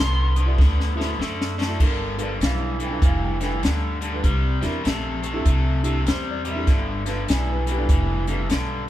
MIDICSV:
0, 0, Header, 1, 6, 480
1, 0, Start_track
1, 0, Tempo, 608519
1, 1422, Time_signature, 4, 2, 24, 8
1, 7015, End_track
2, 0, Start_track
2, 0, Title_t, "Lead electric guitar"
2, 0, Program_c, 0, 29
2, 0, Note_on_c, 0, 84, 80
2, 599, Note_off_c, 0, 84, 0
2, 7015, End_track
3, 0, Start_track
3, 0, Title_t, "Upright piano"
3, 0, Program_c, 1, 0
3, 278, Note_on_c, 1, 69, 44
3, 289, Note_on_c, 1, 72, 44
3, 325, Note_off_c, 1, 69, 0
3, 330, Note_off_c, 1, 72, 0
3, 363, Note_on_c, 1, 64, 66
3, 365, Note_on_c, 1, 66, 67
3, 371, Note_on_c, 1, 69, 67
3, 376, Note_on_c, 1, 74, 87
3, 456, Note_off_c, 1, 64, 0
3, 457, Note_off_c, 1, 66, 0
3, 460, Note_off_c, 1, 69, 0
3, 462, Note_off_c, 1, 74, 0
3, 753, Note_on_c, 1, 64, 68
3, 761, Note_on_c, 1, 66, 63
3, 765, Note_on_c, 1, 69, 65
3, 769, Note_on_c, 1, 72, 75
3, 847, Note_off_c, 1, 64, 0
3, 851, Note_off_c, 1, 66, 0
3, 853, Note_off_c, 1, 69, 0
3, 855, Note_off_c, 1, 72, 0
3, 1233, Note_on_c, 1, 69, 46
3, 1245, Note_on_c, 1, 74, 50
3, 1284, Note_off_c, 1, 69, 0
3, 1289, Note_off_c, 1, 74, 0
3, 1318, Note_on_c, 1, 64, 69
3, 1324, Note_on_c, 1, 66, 61
3, 1328, Note_on_c, 1, 69, 61
3, 1331, Note_on_c, 1, 74, 76
3, 1414, Note_off_c, 1, 64, 0
3, 1418, Note_off_c, 1, 66, 0
3, 1419, Note_off_c, 1, 69, 0
3, 1421, Note_off_c, 1, 74, 0
3, 1447, Note_on_c, 1, 70, 96
3, 1714, Note_on_c, 1, 62, 56
3, 1721, Note_on_c, 1, 65, 53
3, 1723, Note_on_c, 1, 69, 54
3, 1727, Note_on_c, 1, 71, 63
3, 1746, Note_off_c, 1, 70, 0
3, 1758, Note_on_c, 1, 74, 73
3, 1808, Note_off_c, 1, 62, 0
3, 1812, Note_off_c, 1, 65, 0
3, 1813, Note_off_c, 1, 69, 0
3, 1815, Note_off_c, 1, 71, 0
3, 1906, Note_off_c, 1, 74, 0
3, 1923, Note_on_c, 1, 77, 82
3, 2200, Note_on_c, 1, 69, 43
3, 2210, Note_on_c, 1, 71, 50
3, 2224, Note_off_c, 1, 77, 0
3, 2245, Note_on_c, 1, 79, 76
3, 2247, Note_off_c, 1, 69, 0
3, 2252, Note_off_c, 1, 71, 0
3, 2292, Note_on_c, 1, 62, 64
3, 2295, Note_on_c, 1, 65, 63
3, 2297, Note_on_c, 1, 69, 58
3, 2303, Note_on_c, 1, 71, 63
3, 2382, Note_off_c, 1, 62, 0
3, 2384, Note_off_c, 1, 65, 0
3, 2385, Note_off_c, 1, 69, 0
3, 2387, Note_off_c, 1, 71, 0
3, 2390, Note_off_c, 1, 79, 0
3, 2401, Note_on_c, 1, 77, 86
3, 2548, Note_off_c, 1, 77, 0
3, 2558, Note_on_c, 1, 79, 74
3, 2686, Note_on_c, 1, 62, 65
3, 2689, Note_on_c, 1, 65, 51
3, 2694, Note_on_c, 1, 69, 57
3, 2697, Note_on_c, 1, 71, 63
3, 2706, Note_off_c, 1, 79, 0
3, 2720, Note_on_c, 1, 79, 75
3, 2775, Note_off_c, 1, 62, 0
3, 2777, Note_off_c, 1, 65, 0
3, 2779, Note_off_c, 1, 69, 0
3, 2781, Note_off_c, 1, 71, 0
3, 3158, Note_on_c, 1, 69, 42
3, 3173, Note_on_c, 1, 74, 42
3, 3207, Note_off_c, 1, 69, 0
3, 3214, Note_off_c, 1, 74, 0
3, 3253, Note_on_c, 1, 62, 59
3, 3256, Note_on_c, 1, 65, 52
3, 3259, Note_on_c, 1, 69, 58
3, 3267, Note_on_c, 1, 71, 76
3, 3343, Note_off_c, 1, 62, 0
3, 3344, Note_off_c, 1, 65, 0
3, 3346, Note_off_c, 1, 69, 0
3, 3350, Note_off_c, 1, 71, 0
3, 3644, Note_off_c, 1, 79, 0
3, 3644, Note_on_c, 1, 62, 73
3, 3645, Note_on_c, 1, 64, 71
3, 3650, Note_on_c, 1, 67, 72
3, 3653, Note_on_c, 1, 70, 89
3, 3734, Note_off_c, 1, 62, 0
3, 3735, Note_off_c, 1, 64, 0
3, 3737, Note_off_c, 1, 67, 0
3, 3739, Note_off_c, 1, 70, 0
3, 4120, Note_on_c, 1, 67, 48
3, 4132, Note_on_c, 1, 69, 50
3, 4168, Note_off_c, 1, 67, 0
3, 4174, Note_off_c, 1, 69, 0
3, 4204, Note_on_c, 1, 62, 71
3, 4206, Note_on_c, 1, 64, 72
3, 4215, Note_on_c, 1, 67, 70
3, 4219, Note_on_c, 1, 69, 86
3, 4299, Note_off_c, 1, 62, 0
3, 4299, Note_off_c, 1, 64, 0
3, 4304, Note_off_c, 1, 67, 0
3, 4306, Note_off_c, 1, 69, 0
3, 4598, Note_on_c, 1, 62, 79
3, 4601, Note_on_c, 1, 64, 72
3, 4607, Note_on_c, 1, 67, 66
3, 4610, Note_on_c, 1, 69, 78
3, 4691, Note_off_c, 1, 62, 0
3, 4693, Note_off_c, 1, 64, 0
3, 4696, Note_off_c, 1, 67, 0
3, 4697, Note_off_c, 1, 69, 0
3, 4806, Note_on_c, 1, 72, 101
3, 4951, Note_off_c, 1, 72, 0
3, 4977, Note_on_c, 1, 74, 82
3, 5082, Note_on_c, 1, 67, 39
3, 5091, Note_on_c, 1, 75, 61
3, 5092, Note_on_c, 1, 70, 45
3, 5116, Note_off_c, 1, 74, 0
3, 5127, Note_on_c, 1, 76, 91
3, 5128, Note_off_c, 1, 75, 0
3, 5129, Note_off_c, 1, 67, 0
3, 5134, Note_off_c, 1, 70, 0
3, 5168, Note_on_c, 1, 62, 67
3, 5174, Note_on_c, 1, 64, 58
3, 5177, Note_on_c, 1, 67, 54
3, 5181, Note_on_c, 1, 69, 68
3, 5260, Note_off_c, 1, 62, 0
3, 5263, Note_off_c, 1, 64, 0
3, 5265, Note_off_c, 1, 67, 0
3, 5267, Note_off_c, 1, 69, 0
3, 5562, Note_on_c, 1, 62, 64
3, 5566, Note_on_c, 1, 65, 55
3, 5571, Note_on_c, 1, 69, 57
3, 5575, Note_on_c, 1, 71, 74
3, 5653, Note_off_c, 1, 62, 0
3, 5655, Note_off_c, 1, 65, 0
3, 5658, Note_off_c, 1, 69, 0
3, 5659, Note_off_c, 1, 71, 0
3, 5736, Note_off_c, 1, 76, 0
3, 5765, Note_on_c, 1, 74, 81
3, 5910, Note_off_c, 1, 74, 0
3, 5930, Note_on_c, 1, 71, 83
3, 6042, Note_off_c, 1, 71, 0
3, 6042, Note_on_c, 1, 69, 43
3, 6054, Note_on_c, 1, 71, 51
3, 6082, Note_on_c, 1, 59, 77
3, 6087, Note_on_c, 1, 67, 87
3, 6089, Note_off_c, 1, 69, 0
3, 6095, Note_off_c, 1, 71, 0
3, 6135, Note_on_c, 1, 62, 69
3, 6137, Note_on_c, 1, 65, 65
3, 6142, Note_on_c, 1, 69, 61
3, 6146, Note_on_c, 1, 74, 66
3, 6223, Note_off_c, 1, 62, 0
3, 6224, Note_off_c, 1, 65, 0
3, 6227, Note_off_c, 1, 69, 0
3, 6229, Note_off_c, 1, 74, 0
3, 6528, Note_on_c, 1, 62, 66
3, 6529, Note_on_c, 1, 65, 59
3, 6537, Note_on_c, 1, 69, 57
3, 6538, Note_on_c, 1, 71, 70
3, 6615, Note_off_c, 1, 62, 0
3, 6615, Note_off_c, 1, 65, 0
3, 6620, Note_off_c, 1, 69, 0
3, 6620, Note_off_c, 1, 71, 0
3, 7000, Note_off_c, 1, 59, 0
3, 7005, Note_off_c, 1, 67, 0
3, 7015, End_track
4, 0, Start_track
4, 0, Title_t, "Overdriven electric guitar"
4, 0, Program_c, 2, 29
4, 0, Note_on_c, 2, 50, 76
4, 0, Note_on_c, 2, 59, 80
4, 252, Note_off_c, 2, 50, 0
4, 254, Note_off_c, 2, 59, 0
4, 282, Note_on_c, 2, 50, 58
4, 290, Note_on_c, 2, 59, 71
4, 442, Note_off_c, 2, 50, 0
4, 446, Note_off_c, 2, 59, 0
4, 460, Note_on_c, 2, 50, 85
4, 463, Note_on_c, 2, 59, 100
4, 734, Note_off_c, 2, 50, 0
4, 735, Note_off_c, 2, 59, 0
4, 765, Note_on_c, 2, 50, 70
4, 768, Note_on_c, 2, 59, 78
4, 924, Note_off_c, 2, 50, 0
4, 925, Note_off_c, 2, 59, 0
4, 940, Note_on_c, 2, 50, 61
4, 944, Note_on_c, 2, 57, 69
4, 1214, Note_off_c, 2, 50, 0
4, 1216, Note_off_c, 2, 57, 0
4, 1250, Note_on_c, 2, 50, 68
4, 1252, Note_on_c, 2, 57, 71
4, 1407, Note_off_c, 2, 50, 0
4, 1408, Note_off_c, 2, 57, 0
4, 1420, Note_on_c, 2, 43, 80
4, 1426, Note_on_c, 2, 50, 79
4, 1695, Note_off_c, 2, 43, 0
4, 1697, Note_off_c, 2, 50, 0
4, 1724, Note_on_c, 2, 43, 58
4, 1729, Note_on_c, 2, 50, 69
4, 1884, Note_off_c, 2, 43, 0
4, 1887, Note_off_c, 2, 50, 0
4, 1899, Note_on_c, 2, 43, 74
4, 1903, Note_on_c, 2, 52, 73
4, 2174, Note_off_c, 2, 43, 0
4, 2176, Note_off_c, 2, 52, 0
4, 2201, Note_on_c, 2, 43, 58
4, 2207, Note_on_c, 2, 52, 71
4, 2363, Note_off_c, 2, 43, 0
4, 2366, Note_off_c, 2, 52, 0
4, 2380, Note_on_c, 2, 43, 87
4, 2385, Note_on_c, 2, 52, 95
4, 2655, Note_off_c, 2, 43, 0
4, 2657, Note_off_c, 2, 52, 0
4, 2684, Note_on_c, 2, 43, 63
4, 2687, Note_on_c, 2, 52, 77
4, 2845, Note_off_c, 2, 43, 0
4, 2846, Note_off_c, 2, 52, 0
4, 2856, Note_on_c, 2, 43, 67
4, 2861, Note_on_c, 2, 50, 77
4, 3133, Note_off_c, 2, 43, 0
4, 3136, Note_off_c, 2, 50, 0
4, 3162, Note_on_c, 2, 43, 63
4, 3166, Note_on_c, 2, 50, 67
4, 3324, Note_off_c, 2, 43, 0
4, 3326, Note_off_c, 2, 50, 0
4, 3334, Note_on_c, 2, 48, 74
4, 3341, Note_on_c, 2, 55, 87
4, 3612, Note_off_c, 2, 48, 0
4, 3616, Note_off_c, 2, 55, 0
4, 3637, Note_on_c, 2, 48, 68
4, 3641, Note_on_c, 2, 55, 68
4, 3801, Note_off_c, 2, 48, 0
4, 3803, Note_off_c, 2, 55, 0
4, 3816, Note_on_c, 2, 48, 77
4, 3821, Note_on_c, 2, 57, 85
4, 4093, Note_off_c, 2, 48, 0
4, 4096, Note_off_c, 2, 57, 0
4, 4120, Note_on_c, 2, 48, 64
4, 4123, Note_on_c, 2, 57, 66
4, 4283, Note_off_c, 2, 48, 0
4, 4285, Note_off_c, 2, 57, 0
4, 4300, Note_on_c, 2, 48, 84
4, 4304, Note_on_c, 2, 57, 91
4, 4575, Note_off_c, 2, 48, 0
4, 4577, Note_off_c, 2, 57, 0
4, 4609, Note_on_c, 2, 48, 69
4, 4611, Note_on_c, 2, 57, 67
4, 4767, Note_off_c, 2, 48, 0
4, 4768, Note_off_c, 2, 57, 0
4, 4782, Note_on_c, 2, 48, 63
4, 4786, Note_on_c, 2, 55, 78
4, 5056, Note_off_c, 2, 48, 0
4, 5058, Note_off_c, 2, 55, 0
4, 5086, Note_on_c, 2, 48, 73
4, 5090, Note_on_c, 2, 55, 77
4, 5246, Note_off_c, 2, 48, 0
4, 5248, Note_off_c, 2, 55, 0
4, 5260, Note_on_c, 2, 43, 77
4, 5264, Note_on_c, 2, 50, 88
4, 5535, Note_off_c, 2, 43, 0
4, 5537, Note_off_c, 2, 50, 0
4, 5567, Note_on_c, 2, 43, 69
4, 5572, Note_on_c, 2, 50, 71
4, 5726, Note_off_c, 2, 43, 0
4, 5728, Note_off_c, 2, 50, 0
4, 5741, Note_on_c, 2, 43, 77
4, 5746, Note_on_c, 2, 52, 78
4, 6015, Note_off_c, 2, 43, 0
4, 6018, Note_off_c, 2, 52, 0
4, 6046, Note_on_c, 2, 43, 73
4, 6052, Note_on_c, 2, 52, 64
4, 6205, Note_off_c, 2, 43, 0
4, 6208, Note_off_c, 2, 52, 0
4, 6224, Note_on_c, 2, 43, 76
4, 6231, Note_on_c, 2, 52, 103
4, 6496, Note_off_c, 2, 43, 0
4, 6500, Note_off_c, 2, 52, 0
4, 6528, Note_on_c, 2, 43, 73
4, 6531, Note_on_c, 2, 52, 65
4, 6686, Note_off_c, 2, 43, 0
4, 6687, Note_off_c, 2, 52, 0
4, 6698, Note_on_c, 2, 43, 64
4, 6702, Note_on_c, 2, 50, 72
4, 6973, Note_off_c, 2, 43, 0
4, 6974, Note_off_c, 2, 50, 0
4, 7015, End_track
5, 0, Start_track
5, 0, Title_t, "Upright bass"
5, 0, Program_c, 3, 32
5, 0, Note_on_c, 3, 36, 78
5, 428, Note_off_c, 3, 36, 0
5, 460, Note_on_c, 3, 38, 84
5, 910, Note_off_c, 3, 38, 0
5, 938, Note_on_c, 3, 42, 76
5, 1389, Note_off_c, 3, 42, 0
5, 1422, Note_on_c, 3, 31, 88
5, 1871, Note_off_c, 3, 31, 0
5, 1897, Note_on_c, 3, 35, 80
5, 2349, Note_off_c, 3, 35, 0
5, 2382, Note_on_c, 3, 29, 86
5, 2832, Note_off_c, 3, 29, 0
5, 2862, Note_on_c, 3, 38, 85
5, 3312, Note_off_c, 3, 38, 0
5, 3344, Note_on_c, 3, 36, 94
5, 3627, Note_off_c, 3, 36, 0
5, 3651, Note_on_c, 3, 40, 85
5, 3814, Note_off_c, 3, 40, 0
5, 3827, Note_on_c, 3, 34, 84
5, 4274, Note_off_c, 3, 34, 0
5, 4303, Note_on_c, 3, 36, 92
5, 4752, Note_off_c, 3, 36, 0
5, 4786, Note_on_c, 3, 40, 86
5, 5233, Note_off_c, 3, 40, 0
5, 5264, Note_on_c, 3, 31, 97
5, 5712, Note_off_c, 3, 31, 0
5, 5746, Note_on_c, 3, 35, 88
5, 6193, Note_off_c, 3, 35, 0
5, 6223, Note_on_c, 3, 29, 88
5, 6671, Note_off_c, 3, 29, 0
5, 6705, Note_on_c, 3, 35, 81
5, 7015, Note_off_c, 3, 35, 0
5, 7015, End_track
6, 0, Start_track
6, 0, Title_t, "Drums"
6, 286, Note_on_c, 9, 42, 59
6, 365, Note_off_c, 9, 42, 0
6, 461, Note_on_c, 9, 36, 103
6, 477, Note_on_c, 9, 38, 52
6, 539, Note_off_c, 9, 36, 0
6, 556, Note_off_c, 9, 38, 0
6, 635, Note_on_c, 9, 38, 52
6, 714, Note_off_c, 9, 38, 0
6, 794, Note_on_c, 9, 38, 64
6, 873, Note_off_c, 9, 38, 0
6, 955, Note_on_c, 9, 38, 65
6, 1034, Note_off_c, 9, 38, 0
6, 1114, Note_on_c, 9, 38, 75
6, 1193, Note_off_c, 9, 38, 0
6, 1274, Note_on_c, 9, 38, 84
6, 1352, Note_off_c, 9, 38, 0
6, 1420, Note_on_c, 9, 36, 94
6, 1422, Note_on_c, 9, 49, 94
6, 1499, Note_off_c, 9, 36, 0
6, 1501, Note_off_c, 9, 49, 0
6, 1725, Note_on_c, 9, 42, 61
6, 1804, Note_off_c, 9, 42, 0
6, 1903, Note_on_c, 9, 42, 79
6, 1916, Note_on_c, 9, 38, 103
6, 1982, Note_off_c, 9, 42, 0
6, 1995, Note_off_c, 9, 38, 0
6, 2208, Note_on_c, 9, 42, 54
6, 2287, Note_off_c, 9, 42, 0
6, 2382, Note_on_c, 9, 36, 100
6, 2384, Note_on_c, 9, 42, 73
6, 2461, Note_off_c, 9, 36, 0
6, 2463, Note_off_c, 9, 42, 0
6, 2688, Note_on_c, 9, 42, 55
6, 2701, Note_on_c, 9, 38, 32
6, 2767, Note_off_c, 9, 42, 0
6, 2780, Note_off_c, 9, 38, 0
6, 2864, Note_on_c, 9, 42, 78
6, 2877, Note_on_c, 9, 38, 100
6, 2943, Note_off_c, 9, 42, 0
6, 2956, Note_off_c, 9, 38, 0
6, 3168, Note_on_c, 9, 42, 56
6, 3247, Note_off_c, 9, 42, 0
6, 3344, Note_on_c, 9, 36, 104
6, 3344, Note_on_c, 9, 42, 75
6, 3423, Note_off_c, 9, 36, 0
6, 3423, Note_off_c, 9, 42, 0
6, 3648, Note_on_c, 9, 42, 55
6, 3661, Note_on_c, 9, 38, 28
6, 3727, Note_off_c, 9, 42, 0
6, 3740, Note_off_c, 9, 38, 0
6, 3826, Note_on_c, 9, 42, 80
6, 3839, Note_on_c, 9, 38, 103
6, 3905, Note_off_c, 9, 42, 0
6, 3918, Note_off_c, 9, 38, 0
6, 4129, Note_on_c, 9, 42, 60
6, 4208, Note_off_c, 9, 42, 0
6, 4303, Note_on_c, 9, 36, 97
6, 4304, Note_on_c, 9, 42, 76
6, 4382, Note_off_c, 9, 36, 0
6, 4382, Note_off_c, 9, 42, 0
6, 4608, Note_on_c, 9, 42, 64
6, 4687, Note_off_c, 9, 42, 0
6, 4784, Note_on_c, 9, 42, 75
6, 4798, Note_on_c, 9, 38, 110
6, 4863, Note_off_c, 9, 42, 0
6, 4877, Note_off_c, 9, 38, 0
6, 5088, Note_on_c, 9, 42, 56
6, 5166, Note_off_c, 9, 42, 0
6, 5263, Note_on_c, 9, 36, 95
6, 5263, Note_on_c, 9, 42, 77
6, 5276, Note_on_c, 9, 38, 33
6, 5342, Note_off_c, 9, 36, 0
6, 5342, Note_off_c, 9, 42, 0
6, 5355, Note_off_c, 9, 38, 0
6, 5570, Note_on_c, 9, 42, 62
6, 5583, Note_on_c, 9, 38, 27
6, 5649, Note_off_c, 9, 42, 0
6, 5662, Note_off_c, 9, 38, 0
6, 5745, Note_on_c, 9, 42, 83
6, 5758, Note_on_c, 9, 38, 106
6, 5824, Note_off_c, 9, 42, 0
6, 5837, Note_off_c, 9, 38, 0
6, 6050, Note_on_c, 9, 42, 61
6, 6129, Note_off_c, 9, 42, 0
6, 6224, Note_on_c, 9, 36, 110
6, 6225, Note_on_c, 9, 42, 71
6, 6302, Note_off_c, 9, 36, 0
6, 6304, Note_off_c, 9, 42, 0
6, 6526, Note_on_c, 9, 42, 56
6, 6605, Note_off_c, 9, 42, 0
6, 6702, Note_on_c, 9, 42, 84
6, 6715, Note_on_c, 9, 38, 102
6, 6781, Note_off_c, 9, 42, 0
6, 6794, Note_off_c, 9, 38, 0
6, 7015, End_track
0, 0, End_of_file